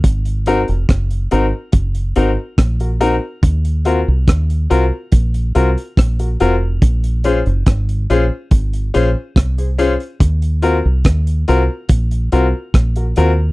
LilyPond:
<<
  \new Staff \with { instrumentName = "Grand piano" } { \time 4/4 \key ees \dorian \tempo 4 = 71 r8 <c' ees' ges' bes'>16 r8. <c' ees' ges' bes'>16 r8. <c' ees' ges' bes'>16 r8 <ges' bes'>16 <c' ees' ges' bes'>16 r16 | r8 <c' f' ges' bes'>16 r8. <c' f' ges' bes'>16 r8. <c' f' ges' bes'>16 r8 <ges' bes'>16 <c' f' ges' bes'>16 r16 | r8 <des' f' aes' c''>16 r8. <des' f' aes' c''>16 r8. <des' f' aes' c''>16 r8 <aes' c''>16 <des' f' aes' c''>16 r16 | r8 <c' f' ges' bes'>16 r8. <c' f' ges' bes'>16 r8. <c' f' ges' bes'>16 r8 <ges' bes'>16 <c' f' ges' bes'>16 r16 | }
  \new Staff \with { instrumentName = "Fingered electric bass" } { \clef bass \time 4/4 \key ees \dorian aes,,8. f,,16 ges,,8 aes,,16 r16 ges,,8 aes,,16 r16 bes,,8. r16 | ees,8. c,16 ees,8 c,16 r16 bes,,8 c,16 r16 bes,,8 f,,8 | bes,,8. ges,,16 aes,,8 bes,,16 r16 aes,,8 bes,,16 r16 c,8. r16 | ees,8. c,16 ees,8 c,16 r16 bes,,8 c,16 r16 bes,,8 ees,8 | }
  \new DrumStaff \with { instrumentName = "Drums" } \drummode { \time 4/4 <hh bd>16 hh16 hh16 hh16 <hh bd ss>16 hh16 hh8 <hh bd>16 hh16 hh8 <hh bd ss>16 hh16 hh8 | <hh bd>16 hh16 hh8 <hh bd ss>16 hh16 hh8 <hh bd>16 hh16 hh16 hh16 <hh bd ss>16 hh16 hh8 | <hh bd>16 hh16 hh16 hh16 <hh bd ss>16 hh16 hh8 <hh bd>16 hh16 hh8 <hh bd ss>16 hh16 hh16 hh16 | <hh bd>16 hh16 hh8 <hh bd ss>16 hh16 hh8 <hh bd>16 hh16 hh8 <hh bd ss>16 hh16 hh8 | }
>>